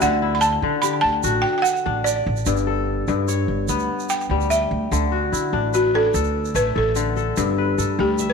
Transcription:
Already playing: B3 D4 E4 F#4 G4 A4 B4
0.01 D2 D3 F#5, shaker
0.22 E4
0.35 B5
0.41 A5, shaker
0.62 D3
0.82 G4 B5, shaker
1.01 D2 A5
1.23 A1 F#4, shaker
1.42 G5
1.58 G5
1.62 F#5, shaker
1.76 shaker
1.86 A1 D4
2.04 D5, shaker
2.26 A1
2.36 shaker
2.46 G1 G2, shaker
2.57 shaker
2.67 A4
3.08 G2, shaker
3.28 C#5, shaker
3.48 G1
3.68 D2 B3, shaker
3.79 shaker
3.99 shaker
4.09 G5, shaker
4.21 shaker
4.30 D2 G3
4.41 shaker
4.50 E5 G5, shaker
4.71 D2
4.91 D2 D3, shaker
5.12 F#4
5.32 D3 E4, shaker
5.53 A1 D4
5.74 F#4 B4, shaker
5.94 D4 A4
6.14 D2 A4, shaker
6.24 shaker
6.45 shaker
6.55 A1 A3 B4, shaker
6.75 A1 A4
6.96 D3, shaker
7.17 A4, shaker
7.37 G1 G2, shaker
7.58 B4
7.78 G2 A4, shaker
7.99 D2 G3 G4
8.19 E5, shaker
8.30 B4

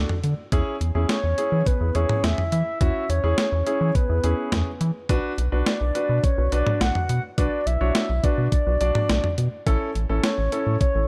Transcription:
Already playing: D4 F#4 A4 D5
0.09 mid tom
0.24 D3, closed hi-hat
0.52 E2 C#4 E4 G#4, kick, closed hi-hat
0.81 E2, closed hi-hat
0.95 E2 C#4 E4 G#4
1.09 C#5, snare, closed hi-hat
1.24 E2
1.38 C#4 E4 G#4, closed hi-hat
1.52 E3
1.66 B4, kick, closed hi-hat
1.81 E2 E4 G#4
1.95 E2 C#4 E4 G#4 C#5, closed hi-hat
2.09 mid tom
2.24 E2 E5, snare, closed hi-hat
2.38 mid tom
2.52 E3 E5, closed hi-hat
2.81 E2 C#4 E4 F#4 E5, kick, closed hi-hat
3.09 E2 C#5, closed hi-hat
3.24 E2 C#4 E4 G#4
3.38 snare, closed hi-hat
3.52 E2
3.67 C#4 E4 G#4 C#5, closed hi-hat
3.81 E3
3.95 B4, kick, closed hi-hat
4.09 E2 E4 G#4
4.24 E2 C#4 E4 G#4, closed hi-hat
4.52 E2, snare, closed hi-hat, mid tom
4.81 E3, closed hi-hat
5.09 B1 D4 F#4 B4, kick, closed hi-hat
5.38 B1, closed hi-hat
5.52 B1 D4 F#4 B4
5.66 D5, snare, closed hi-hat
5.81 B1
5.95 D4 F#4 B4, closed hi-hat
6.09 B2
6.24 C#5, kick, closed hi-hat
6.38 B1 F#4 B4
6.52 B1 D4 F#4 B4 D5, closed hi-hat
6.67 mid tom
6.81 B1 F#5, snare, closed hi-hat
6.95 mid tom
7.09 B2 F#5, closed hi-hat
7.38 B1 D4 F#4 B4 D5, kick, closed hi-hat
7.66 B1 E5, closed hi-hat
7.81 B1 D4 F#4 C#5
7.95 snare, closed hi-hat
8.09 B1
8.24 D4 F#4 B4 D5, kick, closed hi-hat
8.38 B2
8.52 D5, kick, closed hi-hat
8.67 B1 F#4 B4
8.81 B1 D4 F#4 D5, closed hi-hat
8.95 mid tom
9.09 B1, snare, closed hi-hat
9.24 mid tom
9.38 B2, closed hi-hat
9.67 A1 C#4 E4 A4, kick, closed hi-hat
9.95 A1, closed hi-hat
10.09 A1 C#4 E4 A4
10.24 C#5, snare, closed hi-hat
10.38 A1
10.52 C#4 E4 A4, closed hi-hat
10.67 A2
10.81 C#5, kick, closed hi-hat
10.95 A1 E4 A4

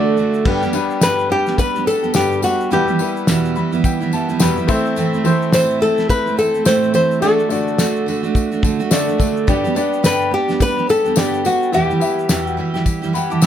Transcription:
Already playing: D3 A3 D4 F#4 D5
0.17 D3 A3 D4 F#4, shaker
0.34 shaker
0.45 G2 D3 G3 B3 D4 G4 B4, kick, crash
0.62 G3 B3 D4 G4, shaker
0.72 G3 B3 D4 B4, tambourine
0.77 G4
0.90 shaker
1.01 G2 D3 G3 B3 D4 G4 B4, snare, tambourine, shaker
1.19 shaker
1.30 G3 B3 D4 G4
1.46 G3 B3 D4 G4, snare, shaker
1.58 B4, kick, tambourine, shaker
1.75 G3 B3 D4 G4, shaker
1.86 G3 B3 D4 G4 A4, tambourine
2.03 G3 B3 D4 G4, shaker
2.14 G2 D3 G3 B3 D4 G4 B4, snare, tambourine, shaker
2.32 shaker
2.42 G3 B3 D4 F#4 G4, tambourine
2.60 shaker
2.70 E2 B2 E3 G3 B3 E4 G4 B4, tambourine, shaker
2.88 E3 G3 B3 E4, shaker
2.99 E3 G3 B3 E4 B4, tambourine
3.17 shaker
3.27 E2 B2 E3 G3 B3 E4, snare, tambourine, shaker
3.45 shaker
3.56 E3 G3 B3 E4 B5, shaker
3.72 E3 G3 B3 E4, shaker
3.84 G5, kick, tambourine, shaker
4.00 E3 G3 B3 E4, shaker
4.12 E3 G3 B3 E4 A5, tambourine
4.29 E3 G3 B3 E4, shaker
4.39 E2 B2 E3 G3 B3 E4 B4 G5, snare, tambourine, shaker
4.57 E3 G3 B3 E4, shaker
4.67 E3 A3 C4 E4 C5 E5, kick, tambourine, shaker
4.85 shaker
4.96 A2 E3 A3 C4 E4, tambourine, shaker
5.13 A3 C4 E4, shaker
5.24 E3 A3 C4 E4 C5, tambourine
5.42 shaker
5.52 A2 E3 A3 C4 E4 C5, snare, tambourine, shaker
5.70 shaker
5.80 E3 A3 C4 E4 A4, tambourine
5.98 A3 C4 E4, snare, shaker
6.09 B4, kick, tambourine, shaker
6.26 A3 C4 E4, shaker
6.37 E3 A3 C4 E4 A4, tambourine, shaker
6.54 A3 C4 E4, shaker
6.65 A2 E3 A3 C4 E4 C5, snare, tambourine, shaker
6.83 shaker
6.93 E3 A3 C4 E4 C5, tambourine
7.11 shaker
7.21 D3 A3 D4 F#4 A4 D5, tambourine, shaker
7.39 A3 D4 F#4, shaker
7.49 D3 A3 D4 F#4 D5, tambourine, shaker
7.53 F#4
7.68 shaker
7.78 D3 A3 D4 F#4, snare, tambourine, shaker
7.96 shaker
8.06 D3 A3 D4 F#4, tambourine
8.23 A3 D4 F#4, shaker
8.35 kick, tambourine, shaker
8.52 A3 D4 F#4, shaker
8.63 D3 A3 D4 F#4, kick, tambourine
8.80 A3 D4 F#4, shaker
8.91 D3 A3 D4 F#4 D5, snare, tambourine, shaker
9.07 A3 D4 F#4, shaker
9.18 D3 A3 D4 F#4, kick, tambourine
9.37 shaker
9.47 G2 D3 G3 B3 D4 G4 D5, kick, tambourine, shaker
9.64 G3 B3 D4 G4, shaker
9.75 G3 B3 D4 G4 D5, tambourine
9.93 shaker
10.03 G2 D3 G3 B3 D4 G4 B4, snare, tambourine, shaker
10.21 shaker
10.31 G3 B3 D4 G4
10.48 G3 B3 D4 G4, snare, shaker
10.60 B4, kick, tambourine, shaker
10.77 G3 B3 D4 G4, shaker
10.87 G3 B3 D4 G4 A4, tambourine, shaker
11.05 G3 B3 D4 G4, shaker
11.15 G2 D3 G3 B3 D4 G4 D5, snare, tambourine, shaker
11.34 shaker
11.45 G3 B3 D4 F#4 G4, tambourine, shaker
11.62 shaker
11.71 E2 B2 E3 G3 B3 E4 G4 E5, tambourine, shaker
11.90 E3 G3 E4 G4, shaker
11.99 E3 G3 B3 E4 G4 E5, tambourine
12.04 G4
12.19 shaker
12.29 E2 B2 E3 G3 E4 G4, snare, tambourine, shaker
12.46 F#4, shaker
12.57 E3 G3 E4 G4
12.74 E3 G3 E4 G4, snare, shaker
12.86 kick, tambourine, shaker
13.02 E3 G3 E4 G4, shaker
13.13 E3 G3 E4 G4 F#5 B5, tambourine
13.30 E3 G3 E4 G4 A5 D6, shaker
13.41 E2 B2 E3 G3 E4 B5 E6, snare, tambourine, shaker

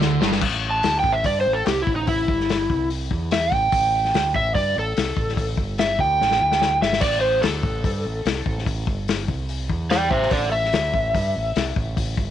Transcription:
Already playing: D2 D3
0.01 snare
0.21 G1 G2, snare
0.32 snare
0.41 A1, kick, crash
0.71 A5
0.83 D2, snare, open hi-hat
0.99 G5
1.04 A1, kick
1.12 E5
1.24 G2 D5, kick, open hi-hat
1.41 C5
1.46 A1
1.53 A4
1.66 C2 G4, snare, open hi-hat
1.82 E4
1.87 A1, kick
1.95 D#4
2.07 E4, kick, open hi-hat
2.28 G1, kick
2.40 snare
2.49 snare, open hi-hat
2.70 C2, kick
2.90 open hi-hat
3.11 E2, kick
3.31 E5, snare, open hi-hat
3.52 A1 G5, kick
3.72 A1, kick, open hi-hat
4.05 snare
4.14 D2, snare, open hi-hat
4.35 A1 E5, kick
4.55 G2 D5, kick, open hi-hat
4.76 A1 A4
4.97 C2, snare, open hi-hat
5.17 A1, kick
5.29 snare
5.37 kick, open hi-hat
5.57 G1, kick
5.78 E5, snare, open hi-hat
5.99 D2 G5, kick
6.20 A1, snare
6.31 snare
6.41 D2
6.52 snare
6.62 snare
6.82 G1 E5, snare
6.93 snare
7.01 A1 D5, kick, open hi-hat, crash
7.21 C5
7.42 D2 A4, snare, open hi-hat
7.63 A1, kick
7.84 G2, kick, open hi-hat
8.05 A1
8.25 C2, snare, open hi-hat
8.46 A1, kick
8.58 snare
8.66 kick, open hi-hat
8.87 G1, kick
9.08 snare, open hi-hat
9.28 C2, kick
9.49 open hi-hat
9.70 E2, kick
9.90 D5 G5, snare, open hi-hat
10.10 A1 C5 E5, kick
10.22 snare
10.31 A1 A4 D5, kick, open hi-hat
10.52 E5
10.64 snare
10.73 D2, snare, open hi-hat
10.94 A1, kick
11.15 G2, kick, open hi-hat
11.36 A1
11.56 C2, snare, open hi-hat
11.76 A1, kick
11.97 kick, open hi-hat
12.17 G1, kick

